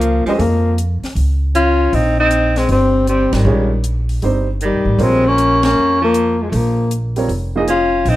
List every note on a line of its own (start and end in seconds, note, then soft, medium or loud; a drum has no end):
0.00 0.22 C#2 medium
0.00 0.23 F3 medium
0.00 0.24 A#3 medium
0.00 closed hi-hat soft
0.26 0.34 F3 medium
0.26 0.39 G#3 medium
0.26 0.39 C#4 medium
0.26 0.39 G4 medium
0.26 0.40 C5 medium
0.26 0.40 D#5 medium
0.26 muted upright bass stroke soft
0.26 open hi-hat soft
0.34 0.38 F3 soft
0.34 0.41 A3 medium
0.38 0.99 F2 medium
0.38 0.77 F3 medium
0.38 0.78 A#3 medium
0.38 open hi-hat soft
0.78 closed hi-hat soft
1.03 muted upright bass stroke soft
1.03 snare soft
1.03 open hi-hat soft
1.15 1.88 C#2 medium
1.15 open hi-hat soft
1.55 1.96 C#4 medium
1.55 1.96 F4 medium
1.55 closed hi-hat soft
1.93 2.65 A#1 medium
1.93 2.19 C4 medium
1.93 2.19 D#4 medium
1.93 open hi-hat soft
2.20 2.59 C4 medium
2.20 2.59 D#4 loud
2.31 closed hi-hat soft
2.56 2.70 G#3 medium
2.56 2.70 C4 medium
2.56 snare soft
2.56 open hi-hat soft
2.69 3.29 G1 medium
2.69 3.06 G3 medium
2.69 3.06 C4 medium
2.69 open hi-hat soft
3.07 3.36 G3 medium
3.07 3.35 C4 medium
3.07 closed hi-hat soft
3.33 3.44 G#1 medium
3.33 3.85 D#3 medium
3.33 3.85 G3 medium
3.33 snare medium
3.33 ride medium
3.45 4.18 A#1 medium
3.45 3.68 G#3 medium
3.45 3.68 C#4 soft
3.45 3.69 F4 soft
3.45 3.69 G#4 soft
3.45 3.69 C#5 medium
3.84 closed hi-hat medium
4.09 open hi-hat soft
4.22 4.70 G1 medium
4.22 4.45 G3 medium
4.22 4.46 C4 medium
4.22 4.46 D#4 soft
4.22 4.46 G4 soft
4.22 4.46 C5 medium
4.22 open hi-hat soft
4.61 5.02 D#3 medium
4.61 closed hi-hat soft
4.65 5.05 G3 medium
4.73 4.84 C2 soft
4.85 4.98 A1 medium
4.99 5.72 A#1 medium
4.99 6.06 G3 medium
4.99 5.28 G#3 medium
4.99 6.07 F4 medium
4.99 6.07 A#4 medium
4.99 6.06 C5 medium
4.99 6.07 C#5 medium
4.99 open hi-hat soft
5.03 5.29 C4 loud
5.26 5.63 A#3 medium
5.26 5.65 C#4 loud
5.38 closed hi-hat soft
5.63 5.99 A#3 medium
5.63 6.00 C#4 medium
5.63 snare medium
5.63 ride medium
5.75 6.48 F2 medium
6.01 6.39 F3 medium
6.01 6.44 A#3 medium
6.14 closed hi-hat soft
6.39 6.48 F3 medium
6.39 6.49 G#3 medium
6.48 6.53 F3 soft
6.48 6.58 A3 medium
6.52 7.25 A#1 medium
6.52 6.91 F3 medium
6.52 open hi-hat soft
6.57 6.93 A#3 medium
6.91 closed hi-hat soft
7.16 7.28 G3 medium
7.16 7.28 C4 medium
7.16 7.29 F4 medium
7.16 7.29 A#4 medium
7.16 7.29 C#5 medium
7.16 open hi-hat soft
7.28 8.02 F1 medium
7.28 open hi-hat soft
7.55 7.67 F3 medium
7.55 7.67 A#3 medium
7.55 7.67 D#4 medium
7.55 7.68 G#4 medium
7.55 7.68 D#5 medium
7.68 8.10 C#4 medium
7.68 8.11 F4 medium
7.68 closed hi-hat soft
8.05 8.16 A#1 medium
8.05 8.16 C4 medium
8.05 open hi-hat soft
8.09 8.16 D#4 medium